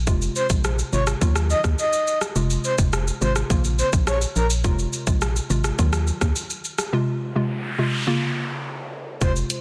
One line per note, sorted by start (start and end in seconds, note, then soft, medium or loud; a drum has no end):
0.07 0.29 F1 loud
0.07 0.46 C3 medium
0.07 0.47 G#3 medium
0.07 0.47 F4 loud
0.07 kick loud
0.07 shaker medium
0.22 shaker soft
0.36 0.47 C5 medium
0.36 shaker medium
0.50 0.83 A#1 medium
0.50 0.89 C3 medium
0.50 0.89 G#3 medium
0.50 0.90 F4 medium
0.50 kick loud
0.50 shaker medium
0.64 cross-stick medium
0.64 shaker medium
0.79 shaker medium
0.93 1.15 G#1 medium
0.93 1.19 C3 medium
0.93 1.19 G#3 medium
0.93 1.19 F4 medium
0.93 1.04 C#5 medium
0.93 shaker soft
1.07 cross-stick loud
1.07 shaker medium
1.21 1.54 D#2 loud
1.21 2.26 D#3 loud
1.21 2.27 F#3 medium
1.21 2.27 F4 loud
1.21 kick medium
1.21 shaker medium
1.36 cross-stick medium
1.36 shaker medium
1.50 1.61 D#5 medium
1.50 shaker medium
1.64 1.75 D#2 medium
1.64 kick medium
1.64 cross-stick medium
1.64 shaker medium
1.79 2.19 D#5 medium
1.79 shaker medium
1.93 shaker medium
2.07 shaker medium
2.21 cross-stick medium
2.21 shaker medium
2.35 2.58 F1 loud
2.35 2.75 C3 loud
2.35 2.75 G#3 medium
2.35 2.75 F4 loud
2.35 shaker medium
2.50 shaker medium
2.64 2.75 C5 medium
2.64 shaker medium
2.78 3.11 F1 loud
2.78 3.18 C3 medium
2.78 3.18 G#3 medium
2.78 3.18 F4 medium
2.78 kick loud
2.78 shaker medium
2.93 cross-stick medium
2.93 shaker medium
3.08 shaker medium
3.21 3.43 G#1 medium
3.21 3.48 C3 medium
3.21 3.48 G#3 medium
3.21 3.48 F4 medium
3.21 3.33 C5 medium
3.21 shaker medium
3.36 cross-stick medium
3.36 shaker medium
3.50 3.83 A#1 loud
3.50 4.55 C#3 loud
3.50 4.55 A#3 medium
3.50 4.55 F4 loud
3.50 kick medium
3.50 shaker medium
3.64 shaker medium
3.79 3.90 C5 medium
3.79 shaker soft
3.93 4.26 A#1 medium
3.93 kick medium
3.93 shaker medium
4.07 4.18 C#5 medium
4.07 cross-stick loud
4.07 shaker medium
4.22 shaker medium
4.36 4.66 A#1 medium
4.36 4.47 A#4 medium
4.36 shaker medium
4.50 shaker medium
4.64 4.86 F1 loud
4.64 5.04 C3 loud
4.64 5.04 G#3 medium
4.64 5.04 F4 loud
4.64 kick loud
4.64 shaker medium
4.79 shaker medium
4.93 shaker medium
5.07 5.40 A#1 medium
5.07 5.47 C3 medium
5.07 5.47 G#3 medium
5.07 5.47 F4 medium
5.07 kick loud
5.07 shaker medium
5.21 cross-stick medium
5.21 shaker medium
5.36 shaker medium
5.50 5.72 G#1 medium
5.50 5.76 C3 medium
5.50 5.76 G#3 medium
5.50 5.77 F4 medium
5.50 shaker medium
5.64 cross-stick medium
5.64 shaker medium
5.78 6.11 D#2 loud
5.78 6.84 D#3 loud
5.78 6.84 F#3 medium
5.78 6.84 F4 loud
5.78 kick medium
5.78 shaker medium
5.93 cross-stick medium
5.93 shaker medium
6.07 shaker soft
6.21 6.32 D#2 medium
6.21 kick medium
6.21 cross-stick medium
6.21 shaker medium
6.36 shaker medium
6.50 shaker medium
6.64 shaker medium
6.78 cross-stick medium
6.78 shaker medium
6.93 7.32 C3 medium
6.93 7.32 G#3 medium
6.93 7.33 F4 loud
6.93 noise sweep medium
7.35 7.75 C3 medium
7.35 7.75 G#3 medium
7.35 7.75 F4 medium
7.78 8.05 C3 medium
7.78 8.05 G#3 medium
7.78 8.05 F4 medium
8.07 9.12 C#3 loud
8.07 9.12 A#3 medium
8.07 9.12 F4 loud
9.21 9.43 F1 loud
9.21 9.61 C3 loud
9.21 9.61 G#3 medium
9.21 9.61 F4 loud
9.21 9.32 C5 loud
9.21 kick loud
9.21 shaker medium
9.36 shaker medium
9.50 closed hi-hat medium
9.50 shaker medium